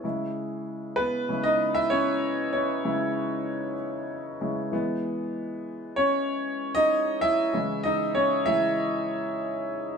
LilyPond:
<<
  \new Staff \with { instrumentName = "Grand piano" } { \time 4/4 \key e \major \tempo 4 = 96 r4. <b b'>8. <dis' dis''>8 <e' e''>16 <cis' cis''>4 | <cis' cis''>2 r2 | r4. <cis' cis''>4~ <cis' cis''>16 <dis' dis''>8. <e' e''>8~ | <e' e''>8 <dis' dis''>8 <cis' cis''>8 <e' e''>2 r8 | }
  \new Staff \with { instrumentName = "Grand piano" } { \clef bass \time 4/4 \key e \major <cis gis e'>2 <cis gis e'>8 r4. | r8 <cis gis e'>4. r4 <cis gis e'>8 <e gis b>8~ | <e gis b>2.~ <e gis b>8 r8 | <cis e gis>4. <cis e gis>8 r2 | }
>>